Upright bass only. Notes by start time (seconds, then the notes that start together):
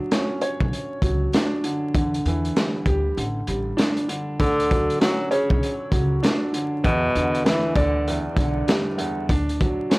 0.61 B1
1.02 C#2
1.95 E2
2.25 E2
2.86 D2
3.17 A1
3.48 A1
4.40 D2
5.50 B1
5.92 C#2
6.84 E2
7.15 E2
7.76 D2
8.37 B1
9.29 D2